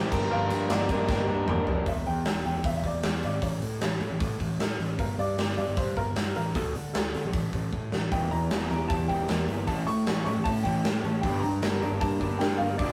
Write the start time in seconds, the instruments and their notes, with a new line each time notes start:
Already playing: clean electric guitar E3 G3 C4 E4 A4, overdriven electric guitar G3 C4 E4, upright piano G5, glockenspiel C6
0.03 snare
0.10 fingered electric bass G1, overdriven electric guitar G2, clean electric guitar G2 D3 F3 A#3 D4 A#4, glockenspiel A#5, kick, crash
0.30 fingered electric bass G1, clean electric guitar G2 D3 F3 A#3 D4 A#4, overdriven electric guitar G2, upright piano F5
0.50 fingered electric bass G2, overdriven electric guitar G4, ride
0.69 fingered electric bass G1, clean electric guitar F3 A#3 D4 A#4, overdriven electric guitar A#3, upright piano D5, snare, ride
0.88 fingered electric bass G2, clean electric guitar F3 A#3 D4 A#4, overdriven electric guitar D4, kick, ride
1.07 fingered electric bass G1, clean electric guitar F3 A#3 D4 A#4, overdriven electric guitar G4, kick, snare
1.29 fingered electric bass G2, overdriven electric guitar D4
1.47 fingered electric bass G1, clean electric guitar G2 D3 F3 A#3 D4 A#4, overdriven electric guitar A#3, mid tom
1.66 fingered electric bass F1, clean electric guitar F3 A#3 D4 A#4, overdriven electric guitar D4, floor tom
1.86 fingered electric bass E1, upright piano E5, kick, open hi-hat
2.06 fingered electric bass E2, upright piano G5, open hi-hat
2.25 fingered electric bass E1, snare, open hi-hat
2.45 fingered electric bass E2, upright piano G5, open hi-hat
2.55 fingered electric bass E1
2.64 fingered electric bass E2, upright piano E5, kick, open hi-hat
2.77 upright piano E5
2.84 fingered electric bass E1, upright piano D5, kick, open hi-hat
3.03 fingered electric bass E2, snare, open hi-hat
3.23 fingered electric bass G#1, upright piano D5, open hi-hat
3.42 fingered electric bass A1, upright piano C#5, kick, open hi-hat
3.62 fingered electric bass A2, open hi-hat
3.81 fingered electric bass A1, upright piano C#5, snare, open hi-hat
4.01 fingered electric bass A2, open hi-hat
4.10 fingered electric bass A1
4.20 fingered electric bass A2, kick, open hi-hat
4.40 fingered electric bass A1, kick, open hi-hat
4.59 fingered electric bass A2, snare, open hi-hat
4.79 fingered electric bass A1, open hi-hat
4.99 fingered electric bass G1, upright piano A#4, kick, open hi-hat
5.19 fingered electric bass G2, upright piano D5, open hi-hat
5.38 fingered electric bass G1, snare, open hi-hat
5.57 fingered electric bass G2, upright piano D5, open hi-hat
5.68 fingered electric bass G1
5.77 fingered electric bass G2, upright piano C5, kick, open hi-hat
5.97 fingered electric bass G1, upright piano A#4, kick, open hi-hat
6.16 fingered electric bass G2, snare, open hi-hat
6.36 fingered electric bass A1, upright piano A#4, open hi-hat
6.55 fingered electric bass D2, upright piano A4, kick, open hi-hat
6.75 fingered electric bass D3, open hi-hat
6.94 fingered electric bass D2, upright piano A4, snare, open hi-hat
7.14 fingered electric bass D3, open hi-hat
7.24 fingered electric bass A#1
7.33 fingered electric bass A1, kick, open hi-hat
7.53 fingered electric bass A1, kick, open hi-hat
7.72 fingered electric bass A2, kick
7.92 fingered electric bass A1, snare
8.12 fingered electric bass E1, overdriven electric guitar E2 E3 A#3, clean electric guitar E3, upright piano G5, kick, open hi-hat
8.31 overdriven electric guitar E2 E3, fingered electric bass E2, upright piano A#5, open hi-hat
8.51 fingered electric bass E1, overdriven electric guitar E2 E3 A#3, clean electric guitar E4, snare, open hi-hat
8.70 fingered electric bass E2, overdriven electric guitar E2 E3, clean electric guitar G4, upright piano A#5, open hi-hat
8.80 fingered electric bass E1
8.88 fingered electric bass E2, overdriven electric guitar E2 E3, clean electric guitar E4, upright piano A5, kick, open hi-hat
9.08 fingered electric bass E1, overdriven electric guitar E2 E3 A#3, clean electric guitar E3, upright piano G5, kick, open hi-hat
9.29 fingered electric bass E2, overdriven electric guitar E2 E3, clean electric guitar A#3, snare, open hi-hat
9.47 fingered electric bass G1, overdriven electric guitar E2 E3, clean electric guitar E4, open hi-hat
9.67 fingered electric bass A1, clean electric guitar A2, overdriven electric guitar A2 A3 C#4, upright piano A5, kick, open hi-hat
9.87 fingered electric bass A2, overdriven electric guitar A2 A3, upright piano C#6, open hi-hat
10.07 fingered electric bass A1, overdriven electric guitar A2 A3 C#4, clean electric guitar C#4, snare, open hi-hat
10.25 overdriven electric guitar A2 A3, fingered electric bass A2, clean electric guitar E4, upright piano C#6, open hi-hat
10.37 fingered electric bass A1
10.44 fingered electric bass A2, overdriven electric guitar A2 A3, clean electric guitar C#4, upright piano A5, kick, open hi-hat
10.63 fingered electric bass A1, overdriven electric guitar A2 A3 C#4, clean electric guitar E3, upright piano G5, kick, open hi-hat
10.84 fingered electric bass A2, overdriven electric guitar A2 A3, clean electric guitar A3, snare, open hi-hat
11.03 fingered electric bass A1, overdriven electric guitar A2 A3, clean electric guitar C#4, open hi-hat
11.21 fingered electric bass G1, clean electric guitar G2, overdriven electric guitar G3 D4 G4, upright piano G5, kick, open hi-hat
11.40 fingered electric bass G2, overdriven electric guitar G3 D4, upright piano A#5, open hi-hat
11.62 fingered electric bass G1, overdriven electric guitar G3 D4 G4, clean electric guitar A#3, snare, open hi-hat
11.80 fingered electric bass G2, overdriven electric guitar G3 D4, clean electric guitar D4, upright piano A#5, open hi-hat
11.91 fingered electric bass G1
12.00 fingered electric bass G2, overdriven electric guitar G3 D4, clean electric guitar A#3, upright piano A5, kick, open hi-hat
12.20 fingered electric bass G1, clean electric guitar D3, overdriven electric guitar G3 D4 G4, kick, open hi-hat
12.39 fingered electric bass G2, clean electric guitar G3, overdriven electric guitar G3 D4, upright piano G5, snare, open hi-hat
12.57 fingered electric bass G1, overdriven electric guitar G3 D4, clean electric guitar A#3, upright piano F5, open hi-hat
12.77 fingered electric bass D2, overdriven electric guitar D3 D4 F4, clean electric guitar D3, upright piano D5, kick, open hi-hat